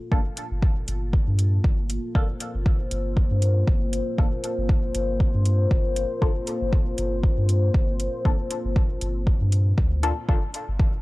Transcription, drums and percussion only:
0, 0, Header, 1, 2, 480
1, 0, Start_track
1, 0, Key_signature, -2, "minor"
1, 0, Tempo, 508475
1, 110, Time_signature, 4, 2, 24, 8
1, 10402, End_track
2, 0, Start_track
2, 0, Title_t, "Drums"
2, 110, Note_on_c, 9, 36, 115
2, 204, Note_off_c, 9, 36, 0
2, 350, Note_on_c, 9, 42, 84
2, 444, Note_off_c, 9, 42, 0
2, 590, Note_on_c, 9, 36, 117
2, 684, Note_off_c, 9, 36, 0
2, 830, Note_on_c, 9, 42, 82
2, 924, Note_off_c, 9, 42, 0
2, 1070, Note_on_c, 9, 36, 115
2, 1164, Note_off_c, 9, 36, 0
2, 1310, Note_on_c, 9, 42, 80
2, 1404, Note_off_c, 9, 42, 0
2, 1550, Note_on_c, 9, 36, 113
2, 1644, Note_off_c, 9, 36, 0
2, 1790, Note_on_c, 9, 42, 82
2, 1885, Note_off_c, 9, 42, 0
2, 2030, Note_on_c, 9, 36, 112
2, 2124, Note_off_c, 9, 36, 0
2, 2270, Note_on_c, 9, 42, 80
2, 2364, Note_off_c, 9, 42, 0
2, 2510, Note_on_c, 9, 36, 115
2, 2604, Note_off_c, 9, 36, 0
2, 2750, Note_on_c, 9, 42, 77
2, 2844, Note_off_c, 9, 42, 0
2, 2990, Note_on_c, 9, 36, 108
2, 3084, Note_off_c, 9, 36, 0
2, 3230, Note_on_c, 9, 42, 77
2, 3324, Note_off_c, 9, 42, 0
2, 3470, Note_on_c, 9, 36, 111
2, 3564, Note_off_c, 9, 36, 0
2, 3710, Note_on_c, 9, 42, 77
2, 3804, Note_off_c, 9, 42, 0
2, 3950, Note_on_c, 9, 36, 108
2, 4044, Note_off_c, 9, 36, 0
2, 4190, Note_on_c, 9, 42, 78
2, 4284, Note_off_c, 9, 42, 0
2, 4430, Note_on_c, 9, 36, 109
2, 4524, Note_off_c, 9, 36, 0
2, 4669, Note_on_c, 9, 42, 80
2, 4764, Note_off_c, 9, 42, 0
2, 4910, Note_on_c, 9, 36, 109
2, 5004, Note_off_c, 9, 36, 0
2, 5149, Note_on_c, 9, 42, 76
2, 5244, Note_off_c, 9, 42, 0
2, 5390, Note_on_c, 9, 36, 104
2, 5484, Note_off_c, 9, 36, 0
2, 5630, Note_on_c, 9, 42, 76
2, 5724, Note_off_c, 9, 42, 0
2, 5870, Note_on_c, 9, 36, 104
2, 5964, Note_off_c, 9, 36, 0
2, 6109, Note_on_c, 9, 42, 78
2, 6204, Note_off_c, 9, 42, 0
2, 6350, Note_on_c, 9, 36, 108
2, 6444, Note_off_c, 9, 36, 0
2, 6589, Note_on_c, 9, 42, 76
2, 6684, Note_off_c, 9, 42, 0
2, 6830, Note_on_c, 9, 36, 108
2, 6924, Note_off_c, 9, 36, 0
2, 7070, Note_on_c, 9, 42, 74
2, 7164, Note_off_c, 9, 42, 0
2, 7310, Note_on_c, 9, 36, 107
2, 7404, Note_off_c, 9, 36, 0
2, 7550, Note_on_c, 9, 42, 78
2, 7644, Note_off_c, 9, 42, 0
2, 7790, Note_on_c, 9, 36, 112
2, 7884, Note_off_c, 9, 36, 0
2, 8030, Note_on_c, 9, 42, 79
2, 8124, Note_off_c, 9, 42, 0
2, 8270, Note_on_c, 9, 36, 109
2, 8364, Note_off_c, 9, 36, 0
2, 8510, Note_on_c, 9, 42, 75
2, 8604, Note_off_c, 9, 42, 0
2, 8750, Note_on_c, 9, 36, 109
2, 8844, Note_off_c, 9, 36, 0
2, 8990, Note_on_c, 9, 42, 75
2, 9084, Note_off_c, 9, 42, 0
2, 9230, Note_on_c, 9, 36, 109
2, 9324, Note_off_c, 9, 36, 0
2, 9470, Note_on_c, 9, 42, 76
2, 9564, Note_off_c, 9, 42, 0
2, 9710, Note_on_c, 9, 36, 110
2, 9804, Note_off_c, 9, 36, 0
2, 9950, Note_on_c, 9, 42, 83
2, 10044, Note_off_c, 9, 42, 0
2, 10190, Note_on_c, 9, 36, 113
2, 10284, Note_off_c, 9, 36, 0
2, 10402, End_track
0, 0, End_of_file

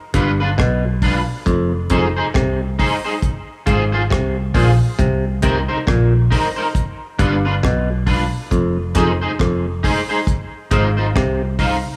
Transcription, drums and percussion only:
0, 0, Header, 1, 2, 480
1, 0, Start_track
1, 0, Tempo, 881057
1, 797, Time_signature, 4, 2, 24, 8
1, 6518, End_track
2, 0, Start_track
2, 0, Title_t, "Drums"
2, 76, Note_on_c, 9, 42, 79
2, 78, Note_on_c, 9, 36, 98
2, 130, Note_off_c, 9, 42, 0
2, 132, Note_off_c, 9, 36, 0
2, 320, Note_on_c, 9, 36, 113
2, 325, Note_on_c, 9, 37, 106
2, 375, Note_off_c, 9, 36, 0
2, 379, Note_off_c, 9, 37, 0
2, 555, Note_on_c, 9, 36, 95
2, 556, Note_on_c, 9, 46, 71
2, 610, Note_off_c, 9, 36, 0
2, 611, Note_off_c, 9, 46, 0
2, 798, Note_on_c, 9, 44, 65
2, 799, Note_on_c, 9, 36, 102
2, 852, Note_off_c, 9, 44, 0
2, 853, Note_off_c, 9, 36, 0
2, 1034, Note_on_c, 9, 42, 68
2, 1040, Note_on_c, 9, 36, 82
2, 1088, Note_off_c, 9, 42, 0
2, 1095, Note_off_c, 9, 36, 0
2, 1280, Note_on_c, 9, 36, 119
2, 1285, Note_on_c, 9, 37, 94
2, 1335, Note_off_c, 9, 36, 0
2, 1339, Note_off_c, 9, 37, 0
2, 1522, Note_on_c, 9, 36, 92
2, 1523, Note_on_c, 9, 46, 72
2, 1577, Note_off_c, 9, 36, 0
2, 1578, Note_off_c, 9, 46, 0
2, 1757, Note_on_c, 9, 36, 100
2, 1758, Note_on_c, 9, 44, 62
2, 1811, Note_off_c, 9, 36, 0
2, 1812, Note_off_c, 9, 44, 0
2, 1998, Note_on_c, 9, 42, 72
2, 1999, Note_on_c, 9, 36, 92
2, 2053, Note_off_c, 9, 36, 0
2, 2053, Note_off_c, 9, 42, 0
2, 2241, Note_on_c, 9, 36, 109
2, 2247, Note_on_c, 9, 37, 103
2, 2296, Note_off_c, 9, 36, 0
2, 2301, Note_off_c, 9, 37, 0
2, 2476, Note_on_c, 9, 36, 93
2, 2477, Note_on_c, 9, 46, 73
2, 2531, Note_off_c, 9, 36, 0
2, 2532, Note_off_c, 9, 46, 0
2, 2719, Note_on_c, 9, 44, 66
2, 2720, Note_on_c, 9, 36, 102
2, 2773, Note_off_c, 9, 44, 0
2, 2774, Note_off_c, 9, 36, 0
2, 2955, Note_on_c, 9, 42, 61
2, 2961, Note_on_c, 9, 36, 86
2, 3009, Note_off_c, 9, 42, 0
2, 3016, Note_off_c, 9, 36, 0
2, 3201, Note_on_c, 9, 36, 109
2, 3206, Note_on_c, 9, 37, 96
2, 3255, Note_off_c, 9, 36, 0
2, 3260, Note_off_c, 9, 37, 0
2, 3442, Note_on_c, 9, 36, 90
2, 3445, Note_on_c, 9, 46, 72
2, 3497, Note_off_c, 9, 36, 0
2, 3499, Note_off_c, 9, 46, 0
2, 3677, Note_on_c, 9, 36, 101
2, 3678, Note_on_c, 9, 44, 58
2, 3731, Note_off_c, 9, 36, 0
2, 3733, Note_off_c, 9, 44, 0
2, 3919, Note_on_c, 9, 36, 100
2, 3919, Note_on_c, 9, 42, 73
2, 3973, Note_off_c, 9, 36, 0
2, 3973, Note_off_c, 9, 42, 0
2, 4160, Note_on_c, 9, 36, 113
2, 4165, Note_on_c, 9, 37, 100
2, 4215, Note_off_c, 9, 36, 0
2, 4220, Note_off_c, 9, 37, 0
2, 4395, Note_on_c, 9, 36, 91
2, 4396, Note_on_c, 9, 46, 73
2, 4450, Note_off_c, 9, 36, 0
2, 4451, Note_off_c, 9, 46, 0
2, 4639, Note_on_c, 9, 36, 100
2, 4639, Note_on_c, 9, 44, 64
2, 4693, Note_off_c, 9, 36, 0
2, 4693, Note_off_c, 9, 44, 0
2, 4875, Note_on_c, 9, 42, 65
2, 4880, Note_on_c, 9, 36, 88
2, 4885, Note_on_c, 9, 37, 57
2, 4930, Note_off_c, 9, 42, 0
2, 4935, Note_off_c, 9, 36, 0
2, 4940, Note_off_c, 9, 37, 0
2, 5120, Note_on_c, 9, 36, 117
2, 5127, Note_on_c, 9, 37, 97
2, 5175, Note_off_c, 9, 36, 0
2, 5181, Note_off_c, 9, 37, 0
2, 5361, Note_on_c, 9, 36, 89
2, 5364, Note_on_c, 9, 46, 75
2, 5416, Note_off_c, 9, 36, 0
2, 5419, Note_off_c, 9, 46, 0
2, 5595, Note_on_c, 9, 36, 110
2, 5597, Note_on_c, 9, 44, 57
2, 5650, Note_off_c, 9, 36, 0
2, 5652, Note_off_c, 9, 44, 0
2, 5836, Note_on_c, 9, 42, 72
2, 5837, Note_on_c, 9, 36, 96
2, 5891, Note_off_c, 9, 36, 0
2, 5891, Note_off_c, 9, 42, 0
2, 6079, Note_on_c, 9, 36, 109
2, 6083, Note_on_c, 9, 37, 102
2, 6133, Note_off_c, 9, 36, 0
2, 6138, Note_off_c, 9, 37, 0
2, 6314, Note_on_c, 9, 36, 85
2, 6314, Note_on_c, 9, 46, 76
2, 6368, Note_off_c, 9, 36, 0
2, 6369, Note_off_c, 9, 46, 0
2, 6518, End_track
0, 0, End_of_file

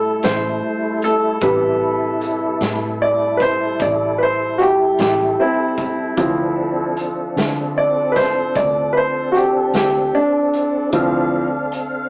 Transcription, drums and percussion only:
0, 0, Header, 1, 2, 480
1, 0, Start_track
1, 0, Key_signature, 0, "minor"
1, 0, Tempo, 792602
1, 860, Time_signature, 12, 3, 24, 8
1, 7322, End_track
2, 0, Start_track
2, 0, Title_t, "Drums"
2, 138, Note_on_c, 9, 42, 69
2, 145, Note_on_c, 9, 38, 92
2, 198, Note_off_c, 9, 42, 0
2, 206, Note_off_c, 9, 38, 0
2, 619, Note_on_c, 9, 42, 48
2, 679, Note_off_c, 9, 42, 0
2, 853, Note_on_c, 9, 42, 68
2, 857, Note_on_c, 9, 36, 97
2, 914, Note_off_c, 9, 42, 0
2, 918, Note_off_c, 9, 36, 0
2, 1340, Note_on_c, 9, 42, 53
2, 1401, Note_off_c, 9, 42, 0
2, 1579, Note_on_c, 9, 42, 68
2, 1587, Note_on_c, 9, 38, 90
2, 1640, Note_off_c, 9, 42, 0
2, 1647, Note_off_c, 9, 38, 0
2, 2060, Note_on_c, 9, 36, 65
2, 2063, Note_on_c, 9, 42, 56
2, 2121, Note_off_c, 9, 36, 0
2, 2124, Note_off_c, 9, 42, 0
2, 2300, Note_on_c, 9, 36, 89
2, 2300, Note_on_c, 9, 42, 67
2, 2361, Note_off_c, 9, 36, 0
2, 2361, Note_off_c, 9, 42, 0
2, 2778, Note_on_c, 9, 42, 51
2, 2838, Note_off_c, 9, 42, 0
2, 3020, Note_on_c, 9, 42, 71
2, 3027, Note_on_c, 9, 38, 94
2, 3081, Note_off_c, 9, 42, 0
2, 3088, Note_off_c, 9, 38, 0
2, 3499, Note_on_c, 9, 36, 66
2, 3499, Note_on_c, 9, 42, 55
2, 3560, Note_off_c, 9, 36, 0
2, 3560, Note_off_c, 9, 42, 0
2, 3738, Note_on_c, 9, 42, 74
2, 3740, Note_on_c, 9, 36, 92
2, 3798, Note_off_c, 9, 42, 0
2, 3800, Note_off_c, 9, 36, 0
2, 4220, Note_on_c, 9, 42, 54
2, 4280, Note_off_c, 9, 42, 0
2, 4464, Note_on_c, 9, 42, 70
2, 4471, Note_on_c, 9, 38, 92
2, 4525, Note_off_c, 9, 42, 0
2, 4532, Note_off_c, 9, 38, 0
2, 4943, Note_on_c, 9, 36, 67
2, 4944, Note_on_c, 9, 42, 52
2, 4952, Note_on_c, 9, 38, 28
2, 5003, Note_off_c, 9, 36, 0
2, 5005, Note_off_c, 9, 42, 0
2, 5012, Note_off_c, 9, 38, 0
2, 5180, Note_on_c, 9, 42, 67
2, 5181, Note_on_c, 9, 36, 94
2, 5241, Note_off_c, 9, 42, 0
2, 5242, Note_off_c, 9, 36, 0
2, 5660, Note_on_c, 9, 42, 52
2, 5721, Note_off_c, 9, 42, 0
2, 5896, Note_on_c, 9, 42, 70
2, 5904, Note_on_c, 9, 38, 89
2, 5957, Note_off_c, 9, 42, 0
2, 5964, Note_off_c, 9, 38, 0
2, 6380, Note_on_c, 9, 42, 53
2, 6440, Note_off_c, 9, 42, 0
2, 6616, Note_on_c, 9, 42, 68
2, 6618, Note_on_c, 9, 36, 97
2, 6676, Note_off_c, 9, 42, 0
2, 6679, Note_off_c, 9, 36, 0
2, 7097, Note_on_c, 9, 42, 56
2, 7158, Note_off_c, 9, 42, 0
2, 7322, End_track
0, 0, End_of_file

